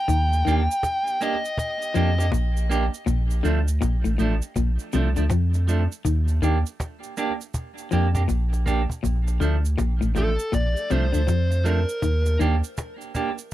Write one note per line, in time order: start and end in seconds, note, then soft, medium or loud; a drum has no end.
0.00 1.26 G5 loud
0.08 0.43 D#2 loud
0.08 0.30 D#3 medium
0.08 cajon bass loud
0.08 cabasa medium
0.31 cajon slap soft
0.31 cabasa medium
0.45 0.68 D#2 loud
0.45 0.59 D#3 medium
0.45 0.60 A#3 loud
0.45 0.61 D4 loud
0.45 0.61 G4 loud
0.45 cabasa medium
0.71 cabasa medium
0.83 cajon bass loud
0.83 cajon slap loud
0.83 cabasa medium
1.05 cajon slap soft
1.05 cabasa soft
1.20 1.35 A#3 medium
1.20 1.35 D4 medium
1.20 1.36 G4 loud
1.20 1.56 D#5 medium
1.20 cajon slap soft
1.20 cabasa medium
1.45 cabasa medium
1.57 2.29 D#5 medium
1.57 cajon bass loud
1.57 cabasa medium
1.81 cajon slap soft
1.81 cabasa medium
1.94 2.30 F2 loud
1.94 2.17 F3 medium
1.94 2.09 A#3 medium
1.94 2.09 D4 loud
1.94 2.10 G4 medium
1.94 cabasa medium
2.18 2.26 A#3 medium
2.18 2.25 D4 medium
2.18 2.25 G4 medium
2.18 cajon slap medium
2.18 cabasa medium
2.32 2.89 A#1 medium
2.32 2.54 A#2 medium
2.32 cajon bass loud
2.32 cajon slap loud
2.32 cabasa medium
2.55 cajon slap soft
2.55 cabasa soft
2.70 2.84 A#3 medium
2.70 2.84 D4 loud
2.70 2.85 G4 loud
2.70 cabasa medium
2.94 cabasa medium
3.06 3.42 A#1 loud
3.06 3.29 A#2 medium
3.06 cajon bass loud
3.06 cabasa medium
3.30 cajon slap soft
3.30 cabasa medium
3.43 3.80 D2 medium
3.43 3.66 D3 medium
3.43 3.58 F3 loud
3.43 3.59 A3 loud
3.43 3.59 D4 loud
3.43 cabasa medium
3.68 cajon slap soft
3.68 cabasa medium
3.81 4.04 A#1 medium
3.81 3.95 A#2 medium
3.81 cajon bass loud
3.81 cajon slap loud
3.81 cabasa medium
4.03 4.18 A1 medium
4.03 4.13 A2 medium
4.03 cajon slap soft
4.03 cabasa soft
4.18 4.41 A1 medium
4.18 4.32 A2 medium
4.18 4.33 F3 medium
4.18 4.34 A3 medium
4.18 4.34 D4 loud
4.18 cabasa medium
4.42 cabasa medium
4.56 4.78 A#1 loud
4.56 4.70 A#2 medium
4.56 cajon bass loud
4.56 cabasa medium
4.79 cajon slap soft
4.79 cabasa medium
4.93 5.16 C2 loud
4.93 5.07 C3 medium
4.93 5.08 F3 medium
4.93 5.08 A3 loud
4.93 5.08 D4 loud
4.93 cabasa medium
5.16 5.30 D2 medium
5.16 5.25 D3 medium
5.16 5.24 F3 medium
5.16 5.24 A3 medium
5.16 5.23 D4 medium
5.16 cajon slap medium
5.16 cabasa medium
5.30 5.88 F2 loud
5.30 5.53 F3 medium
5.30 cajon bass loud
5.30 cajon slap loud
5.30 cabasa medium
5.53 muted clean electric guitar stroke soft
5.53 cajon slap soft
5.53 cabasa soft
5.68 5.82 F3 medium
5.68 5.83 A3 medium
5.68 5.83 D4 medium
5.68 cabasa medium
5.92 cabasa medium
6.05 6.41 D#2 loud
6.05 6.27 D#3 medium
6.05 cajon bass loud
6.05 cabasa medium
6.28 cajon slap soft
6.28 cabasa medium
6.42 6.64 D#2 loud
6.42 6.56 D#3 medium
6.42 6.57 A#3 medium
6.42 6.57 D4 medium
6.42 6.58 G4 loud
6.42 cabasa medium
6.66 cabasa medium
6.80 cajon bass loud
6.80 cajon slap loud
6.80 cabasa medium
7.02 cajon slap soft
7.02 cabasa soft
7.17 7.32 A#3 medium
7.17 7.32 D4 medium
7.17 7.32 G4 medium
7.17 cajon slap soft
7.17 cabasa medium
7.41 cabasa medium
7.54 cajon bass loud
7.54 cabasa medium
7.77 cajon slap soft
7.77 cabasa soft
7.91 8.28 F2 loud
7.91 8.14 F3 medium
7.91 8.06 A#3 medium
7.91 8.07 D4 medium
7.91 8.07 G4 loud
7.91 cajon slap soft
7.91 cabasa medium
8.15 8.22 A#3 medium
8.15 8.22 D4 medium
8.15 8.22 G4 medium
8.15 cajon bass loud
8.15 cabasa medium
8.28 8.86 A#1 medium
8.28 8.51 A#2 medium
8.28 cajon bass loud
8.28 cajon slap medium
8.28 cabasa medium
8.53 cajon slap medium
8.53 cabasa soft
8.66 8.81 A#3 medium
8.66 8.81 D4 medium
8.66 8.82 G4 loud
8.66 cajon bass medium
8.66 cabasa medium
8.90 cajon bass medium
8.90 cabasa medium
9.03 9.39 A#1 loud
9.03 9.26 A#2 medium
9.03 cajon bass loud
9.03 cabasa medium
9.28 cajon slap medium
9.28 cabasa medium
9.40 9.76 D2 loud
9.40 9.63 D3 medium
9.40 9.55 F3 medium
9.40 9.56 A3 medium
9.40 9.56 D4 loud
9.40 cajon slap soft
9.40 cabasa medium
9.65 cajon slap soft
9.65 cabasa medium
9.78 10.01 A#1 medium
9.78 9.92 A#2 medium
9.78 cajon bass loud
9.78 cajon slap loud
9.78 cabasa medium
10.01 10.15 A1 medium
10.01 10.10 A2 medium
10.01 cabasa soft
10.15 10.38 A1 medium
10.15 10.29 A2 medium
10.15 10.30 F3 medium
10.15 10.30 A3 medium
10.15 10.31 D4 medium
10.15 10.52 A4 loud
10.15 cajon bass medium
10.15 cabasa medium
10.39 cabasa medium
10.52 10.75 A#1 loud
10.52 10.67 A#2 medium
10.52 10.92 D5 loud
10.52 cajon bass loud
10.52 cabasa medium
10.77 cabasa medium
10.90 11.13 C2 loud
10.90 11.05 C3 medium
10.90 11.05 F3 medium
10.90 11.05 A3 loud
10.90 11.06 D4 medium
10.90 11.68 C5 loud
10.90 cabasa medium
11.13 11.27 D2 medium
11.13 11.21 D3 medium
11.13 11.21 F3 soft
11.13 11.21 A3 medium
11.13 11.20 D4 medium
11.13 cajon slap soft
11.13 cabasa medium
11.27 11.86 F2 medium
11.27 11.50 F3 medium
11.27 cajon bass loud
11.27 cajon slap loud
11.27 cabasa medium
11.51 muted clean electric guitar stroke medium
11.51 cabasa soft
11.64 11.79 F3 medium
11.64 11.80 A3 medium
11.64 11.80 D4 medium
11.64 12.36 A#4 medium
11.64 cabasa medium
11.89 cabasa medium
12.02 12.38 D#2 loud
12.02 12.25 D#3 medium
12.02 cajon bass loud
12.02 cabasa medium
12.26 cajon slap medium
12.26 cabasa medium
12.39 12.62 D#2 loud
12.39 12.54 D#3 medium
12.39 12.54 A#3 medium
12.39 12.55 D4 loud
12.39 12.55 G4 loud
12.39 cabasa medium
12.64 cabasa medium
12.77 cajon bass loud
12.77 cajon slap loud
12.77 cabasa medium
13.01 cabasa soft
13.15 13.29 A#3 medium
13.15 13.30 D4 medium
13.15 13.30 G4 medium
13.15 cajon bass medium
13.15 cabasa medium
13.38 cajon slap soft
13.38 cabasa medium